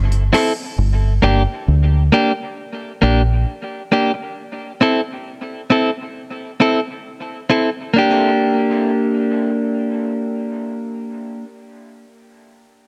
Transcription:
Already playing: G1
0.12 closed hi-hat
0.33 C4 E4 A4, cross-stick, open hi-hat
0.78 G1
1.22 G1 A#3 D4 G4
1.68 D2
2.12 A#3 D4 G4
3.02 A#1 A#3 D4 G4
3.92 A#3 D4 G4
4.14 muted clean electric guitar stroke
4.81 C4 E4 A4
5.70 C4 E4 A4
6.60 C4 E4 A4
7.50 C4 E4 A4
7.94 A#3 D4
7.98 G4

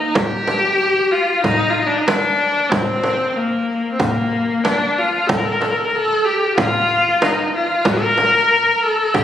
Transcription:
Already playing: D#4
0.15 G4, frame drum, darbuka dum
0.47 darbuka tek, frame drum
0.81 darbuka ka
0.96 darbuka ka
1.11 F4
1.44 D#4, darbuka dum, frame drum
1.70 F4
1.78 D#4
1.86 D4
1.92 darbuka ka
1.98 D#4
2.06 D4, darbuka tek, frame drum
2.25 darbuka ka
2.40 darbuka ka
2.57 darbuka ka
2.70 C4, frame drum, darbuka dum
3.04 darbuka tek, frame drum
3.35 A#3, darbuka ka
3.52 darbuka ka
3.68 darbuka ka
3.92 C4
3.99 A#3, frame drum, darbuka dum
4.64 D4, darbuka tek, frame drum
4.98 F4, darbuka ka
5.27 A4, darbuka dum, frame drum
5.37 A#4
5.45 A4
5.52 A#4
5.61 A4, darbuka tek, frame drum
5.70 A#4
5.77 A4
5.85 A#4
5.94 A4, darbuka ka
6.10 darbuka ka
6.24 G4
6.57 F4, frame drum, darbuka dum
7.06 darbuka ka
7.22 D#4, darbuka tek, frame drum
7.38 darbuka ka
7.54 F4, darbuka ka
7.71 darbuka ka
7.85 A#4, frame drum, darbuka dum
8.18 darbuka tek, frame drum
8.51 darbuka ka
8.68 darbuka ka
8.82 A4
9.14 G4, frame drum, darbuka dum

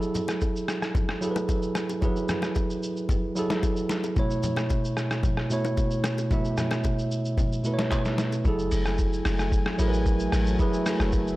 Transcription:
Already playing: F#3 E4 G#4 A4
0.02 shaker
0.15 low conga, shaker
0.28 cross-stick, low bongo, shaker
0.41 kick, high bongo, shaker
0.56 shaker
0.68 cross-stick, shaker
0.82 cross-stick, shaker
0.95 kick, low conga, shaker
1.09 cross-stick
1.21 F#3 E4 G#4 A4, shaker
1.31 B4
1.36 low bongo, shaker
1.49 kick, high bongo, shaker
1.62 shaker
1.75 cross-stick, low bongo, shaker
1.89 high bongo, shaker
2.01 F#3 E4 G#4 B4, kick, low conga, shaker
2.16 shaker
2.29 cross-stick, low conga, shaker
2.42 cross-stick, low bongo, shaker
2.55 kick, high bongo, shaker
2.70 shaker
2.83 shaker
2.97 shaker
3.09 kick, low conga, shaker
3.35 F#3 E4 G#4 A4, shaker
3.50 snare, low bongo, shaker
3.63 kick, high bongo, shaker
3.76 shaker
3.89 snare, low bongo, shaker
4.03 high bongo, shaker
4.16 B2 A3 E4 C#5, kick, low conga, shaker
4.30 shaker
4.43 low conga, shaker
4.56 cross-stick, low bongo, shaker
4.69 kick, high bongo, shaker
4.84 shaker
4.97 cross-stick, shaker
5.11 cross-stick, shaker
5.23 kick, low conga, shaker
5.37 cross-stick
5.50 B2 A3 E4 C#5, shaker
5.65 low bongo, shaker
5.77 kick, high bongo, shaker
5.91 shaker
6.04 cross-stick, low bongo, shaker
6.18 high bongo, shaker
6.30 B2 A3 E4 E5, kick, low conga, shaker
6.45 shaker
6.57 cross-stick, low conga, shaker
6.71 cross-stick, low bongo, shaker
6.84 kick, high bongo, shaker
6.99 shaker
7.11 shaker
7.25 shaker
7.38 kick, low conga, shaker
7.52 shaker
7.64 B2 A3 E4 B4, shaker
7.74 C#5
7.79 snare, low bongo, shaker
7.91 kick, clap, high bongo, shaker
8.05 snare, shaker
8.18 snare, low bongo, shaker
8.32 high bongo, shaker
8.44 F#1 F#3 A3 E4 G#4 A4 G#5, kick, shaker
8.59 shaker
8.71 F#1, open hi-hat, shaker
8.86 cross-stick, shaker
8.98 kick, shaker
9.13 shaker
9.25 F#1, cross-stick, open hi-hat, shaker
9.39 cross-stick, shaker
9.52 kick, shaker
9.66 cross-stick
9.78 A1 F#3 E4 G#4 A#4, open hi-hat, shaker
9.88 B4
9.93 shaker
10.06 kick, shaker
10.19 shaker
10.32 A1, cross-stick, open hi-hat, shaker
10.46 shaker
10.58 F#3 E4 G#4 B4, kick, shaker
10.73 shaker
10.86 cross-stick, open hi-hat, shaker
11.00 F#1, cross-stick, shaker
11.12 kick, shaker
11.27 shaker

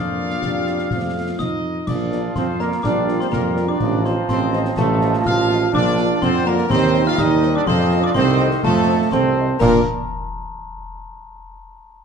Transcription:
Already playing: F2 A#3 D4 F4 D5 F5 F6
0.30 snare
0.42 F2 G4, concert bass drum, snare
0.67 snare
0.79 snare
0.91 F2 A3 C4 F4, concert bass drum, snare
1.39 F2 D#4 D#5 D#6, concert bass drum, snare
1.87 A#1 F3 D4 F4 D5 F5 D6, concert bass drum, crash
2.12 F4 A#4 D5, snare
2.36 F2 C4 C5 C6, concert bass drum, snare
2.60 A#3 F4 A#4 D5 A#5, snare
2.72 snare
2.83 A#1 G3 D4 D5 D6, concert bass drum, snare
3.08 F4 A#4 D5, snare
3.20 C4 C5 C6, snare
3.31 F2 A#3 A#4 A#5, concert bass drum, snare
3.57 F4 A#4 D5, snare
3.68 D4 D5 D6
3.80 A1 F3 F4 D#5, concert bass drum, crash
4.04 C4 F4 C5 D#5 C6, snare
4.29 A1 C4 C5 C6, concert bass drum, snare
4.53 F4 C5 D#5, snare
4.65 snare
4.77 A1 F3 A3 A4 A5, concert bass drum, snare
5.01 F4 C5 D#5, snare
5.14 snare
5.25 A1 F4 F5 F6, concert bass drum, snare
5.50 F4 C5 D#5, snare
5.73 A#1 D4 F4 D5 D6, concert bass drum, crash
5.98 F4 A#4 D5, snare
6.22 F2 D3 C4 C5 C6, concert bass drum, snare
6.46 A#3 F4 A#4 D5 A#5, snare
6.58 snare
6.69 D#2 D#3 C4 G4 C5 D#5 C6, concert bass drum, snare
6.94 G4 C5 D#5, snare
7.06 F4 F5 F6, snare
7.17 D#2 G3 D#4 D#5 D#6, concert bass drum, snare
7.42 G4 C5 D#5, snare
7.55 D4 D5 D6
7.67 F2 F3 C4 A4 C5 D#5 C6, concert bass drum, crash
7.91 A4 C5 D#5, snare
8.04 D4 D5 D6
8.14 C2 D#3 C4 C5 C6, concert bass drum, snare
8.39 A4 C5 D#5, snare
8.51 snare
8.63 F2 F3 A3 A4 A5, concert bass drum, snare
8.87 A4 C5 D#5
9.12 C2 A3 C4 C5 C6, concert bass drum, snare
9.36 A4 C5 D#5
9.60 A#2 A#3 D4 A#4 D5 A#5, concert bass drum, snare, crash

